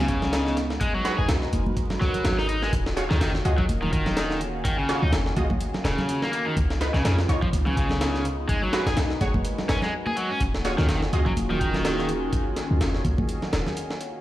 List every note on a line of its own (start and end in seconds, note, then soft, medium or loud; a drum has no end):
0.00 0.78 C#2 loud
0.00 0.79 C#3 medium
0.00 0.79 G#3 medium
0.00 0.79 B3 medium
0.00 2.69 D#4 medium
0.00 0.77 F4 medium
0.08 0.56 C#3 medium
0.08 kick medium
0.08 closed hi-hat medium
0.22 snare medium
0.22 low conga medium
0.33 snare loud
0.33 closed hi-hat medium
0.47 snare soft
0.57 snare soft
0.57 closed hi-hat medium
0.70 snare medium
0.80 2.71 G#3 medium
0.80 0.92 G#3 medium
0.80 6.52 F#4 medium
0.80 2.71 A#4 medium
0.80 2.71 B4 medium
0.80 kick loud
0.80 closed hi-hat medium
0.94 1.17 F#3 medium
1.05 1.14 F#4 loud
1.05 1.14 G#4 medium
1.05 1.14 B4 loud
1.05 snare soft
1.05 closed hi-hat medium
1.18 1.27 G#1 medium
1.18 1.26 G#4 medium
1.29 1.49 B1 medium
1.29 snare loud
1.29 closed hi-hat medium
1.42 snare soft
1.53 1.73 F#1 loud
1.53 closed hi-hat medium
1.53 high conga medium
1.66 high conga medium
1.66 low conga loud
1.77 kick medium
1.77 closed hi-hat medium
1.90 snare medium
1.90 low conga medium
2.01 2.12 B1 loud
2.01 2.37 F#3 medium
2.01 snare soft
2.14 2.23 G#1 soft
2.14 closed hi-hat medium
2.14 low conga medium
2.25 2.70 G#1 medium
2.25 snare loud
2.25 closed hi-hat medium
2.38 2.48 D#4 medium
2.38 snare soft
2.49 2.61 D#4 medium
2.49 closed hi-hat medium
2.62 2.71 G#3 medium
2.62 snare soft
2.73 3.07 D#1 loud
2.73 6.53 D#3 medium
2.73 6.53 A#3 medium
2.73 6.53 C#4 medium
2.73 6.53 F4 medium
2.73 6.53 G#4 medium
2.73 kick loud
2.73 closed hi-hat medium
2.86 snare medium
2.97 3.06 F4 loud
2.97 3.06 F#4 medium
2.97 3.06 G#4 medium
2.97 3.06 C#5 loud
2.97 snare soft
2.97 closed hi-hat medium
3.10 3.19 C#2 medium
3.10 3.18 D#3 medium
3.10 snare medium
3.20 3.41 F#1 medium
3.20 3.31 D#3 loud
3.20 snare loud
3.20 closed hi-hat medium
3.35 snare medium
3.45 3.65 C#2 medium
3.45 3.54 F4 medium
3.45 3.54 F#4 medium
3.45 3.54 G#4 medium
3.45 3.54 D#5 loud
3.45 closed hi-hat medium
3.58 3.63 F#3 medium
3.58 kick loud
3.58 low conga loud
3.69 4.62 D#1 loud
3.69 closed hi-hat medium
3.69 high conga medium
3.82 3.91 D#3 medium
3.82 high conga medium
3.82 low conga medium
3.93 4.40 D#3 medium
3.93 kick loud
3.93 closed hi-hat medium
4.06 snare medium
4.06 low conga loud
4.17 snare loud
4.17 closed hi-hat medium
4.30 snare soft
4.41 closed hi-hat medium
4.65 4.76 D#3 medium
4.65 kick loud
4.65 closed hi-hat medium
4.78 5.01 C#3 medium
4.89 4.98 F4 loud
4.89 4.98 F#4 medium
4.89 4.98 G#4 medium
4.89 4.98 C#5 loud
4.89 snare soft
4.89 closed hi-hat medium
5.03 5.11 C#2 medium
5.03 5.11 D#4 medium
5.13 5.33 F#1 medium
5.13 snare loud
5.13 closed hi-hat medium
5.26 snare soft
5.37 5.57 C#2 medium
5.37 5.46 F4 medium
5.37 5.46 F#4 medium
5.37 5.46 G#4 medium
5.37 5.46 D#5 loud
5.37 kick medium
5.37 closed hi-hat medium
5.37 high conga medium
5.50 kick loud
5.50 high conga medium
5.50 low conga loud
5.61 closed hi-hat medium
5.74 snare soft
5.74 low conga medium
5.84 5.96 D#1 loud
5.84 6.21 C#3 medium
5.84 snare loud
5.84 closed hi-hat medium
5.98 snare soft
5.98 low conga loud
6.09 closed hi-hat medium
6.22 6.32 A#3 medium
6.22 snare soft
6.33 6.45 A#3 medium
6.33 closed hi-hat medium
6.46 6.54 D#3 medium
6.56 6.91 C#2 loud
6.56 8.47 C#3 medium
6.56 10.37 G#3 medium
6.56 8.47 B3 medium
6.56 10.37 D#4 medium
6.56 8.47 F4 loud
6.56 kick loud
6.56 closed hi-hat medium
6.70 snare medium
6.81 6.90 D#4 loud
6.81 6.90 F4 medium
6.81 6.90 B4 loud
6.81 snare soft
6.81 closed hi-hat medium
6.94 7.03 B1 medium
6.94 7.03 C#3 medium
6.94 snare medium
7.05 7.25 F2 medium
7.05 7.15 C#3 loud
7.05 snare loud
7.05 closed hi-hat medium
7.19 snare medium
7.29 7.49 B1 medium
7.29 7.38 D#4 medium
7.29 7.38 F4 medium
7.29 7.38 C#5 loud
7.29 closed hi-hat medium
7.42 7.47 F3 medium
7.42 kick loud
7.42 low conga loud
7.53 8.46 C#2 medium
7.53 closed hi-hat medium
7.53 high conga medium
7.66 7.76 C#3 medium
7.66 high conga medium
7.66 low conga medium
7.77 8.24 C#3 medium
7.77 kick loud
7.77 closed hi-hat medium
7.89 snare medium
7.89 low conga medium
8.01 snare loud
8.01 closed hi-hat medium
8.15 snare soft
8.25 closed hi-hat medium
8.49 8.60 G#3 medium
8.49 14.21 F#4 medium
8.49 10.39 A#4 medium
8.49 10.39 B4 loud
8.49 kick loud
8.49 closed hi-hat medium
8.63 8.85 F#3 medium
8.73 8.82 F#4 loud
8.73 8.82 G#4 medium
8.73 8.82 B4 loud
8.73 snare loud
8.73 closed hi-hat medium
8.86 8.95 G#1 medium
8.86 8.95 G#4 medium
8.86 snare loud
8.86 closed hi-hat medium
8.97 9.17 B1 medium
8.97 snare loud
8.97 closed hi-hat medium
9.10 snare soft
9.21 9.41 F#1 medium
9.21 9.30 F#4 medium
9.21 9.30 G#4 medium
9.21 9.30 C#5 loud
9.21 kick medium
9.21 closed hi-hat medium
9.21 high conga medium
9.34 kick loud
9.34 high conga medium
9.34 low conga medium
9.45 closed hi-hat medium
9.58 snare soft
9.58 low conga medium
9.69 9.80 G#1 medium
9.69 9.80 C#4 medium
9.69 snare loud
9.69 closed hi-hat medium
9.82 9.92 G#3 medium
9.82 snare soft
9.82 low conga medium
10.06 10.15 G#4 loud
10.06 high conga medium
10.17 10.30 F#3 medium
10.17 closed hi-hat medium
10.30 10.40 C#4 loud
10.40 10.75 D#1 loud
10.40 14.21 D#3 medium
10.40 14.21 A#3 medium
10.40 14.21 C#4 medium
10.40 14.21 F4 medium
10.40 14.21 G#4 loud
10.40 kick loud
10.40 closed hi-hat medium
10.55 snare medium
10.65 10.74 F4 loud
10.65 10.74 F#4 medium
10.65 10.74 G#4 medium
10.65 10.74 C#5 loud
10.65 snare soft
10.65 closed hi-hat medium
10.78 10.87 C#2 medium
10.78 10.87 D#3 medium
10.78 snare medium
10.89 11.09 F#1 medium
10.89 10.99 D#3 loud
10.89 snare loud
10.89 closed hi-hat medium
11.02 snare medium
11.13 11.33 C#2 loud
11.13 11.22 F4 medium
11.13 11.22 F#4 medium
11.13 11.22 G#4 medium
11.13 11.22 D#5 loud
11.13 closed hi-hat medium
11.26 11.31 F#3 medium
11.26 kick loud
11.26 low conga medium
11.36 12.30 D#1 loud
11.36 closed hi-hat medium
11.36 high conga medium
11.50 11.60 D#3 medium
11.50 high conga medium
11.50 low conga medium
11.61 12.08 D#3 medium
11.61 kick medium
11.61 closed hi-hat medium
11.74 snare medium
11.74 low conga medium
11.85 snare loud
11.85 closed hi-hat medium
11.98 snare soft
12.09 closed hi-hat medium
12.33 kick loud
12.33 closed hi-hat medium
12.57 snare medium
12.57 closed hi-hat medium
12.71 12.79 C#2 medium
12.81 13.01 F#1 medium
12.81 snare loud
12.81 closed hi-hat medium
12.94 snare soft
13.05 13.25 C#2 loud
13.05 kick medium
13.05 closed hi-hat medium
13.05 high conga medium
13.18 kick loud
13.18 high conga medium
13.18 low conga medium
13.29 closed hi-hat medium
13.42 snare soft
13.42 low conga medium
13.53 13.64 D#1 medium
13.53 snare loud
13.53 closed hi-hat medium
13.66 snare soft
13.66 low conga medium
13.77 closed hi-hat medium
13.90 snare soft
14.01 closed hi-hat medium